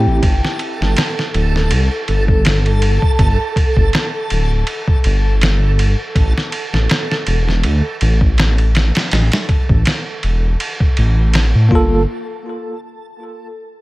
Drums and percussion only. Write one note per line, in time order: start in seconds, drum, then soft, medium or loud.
0.23 kick loud
0.23 ride medium
0.45 snare soft
0.59 ride medium
0.82 snare soft
0.97 snare loud
0.97 ride medium
1.19 snare soft
1.34 ride medium
1.56 snare soft
1.71 ride medium
2.08 ride medium
2.28 kick medium
2.45 snare loud
2.45 ride medium
2.66 ride soft
2.82 ride medium
3.02 kick medium
3.19 kick loud
3.19 ride medium
3.56 kick medium
3.56 ride medium
3.77 kick medium
3.93 snare loud
3.93 ride medium
4.30 ride medium
4.67 ride medium
4.88 kick loud
5.04 ride medium
5.41 snare loud
5.41 ride medium
5.79 ride medium
6.15 kick loud
6.15 ride medium
6.38 snare soft
6.52 ride medium
6.74 snare soft
6.89 snare loud
6.89 ride medium
7.11 snare medium
7.27 ride medium
7.49 snare soft
7.63 ride medium
8.01 ride medium
8.21 kick loud
8.38 snare loud
8.38 ride medium
8.58 ride soft
8.75 snare loud
8.75 ride medium
8.95 snare loud
8.95 ride medium
9.11 snare loud
9.11 ride medium
9.32 snare loud
9.32 ride medium
9.49 kick medium
9.49 ride medium
9.69 kick medium
9.85 snare loud
9.85 ride medium
10.23 ride medium
10.60 ride medium
10.80 kick medium
10.97 ride medium
11.34 snare loud
11.34 ride medium
11.71 kick loud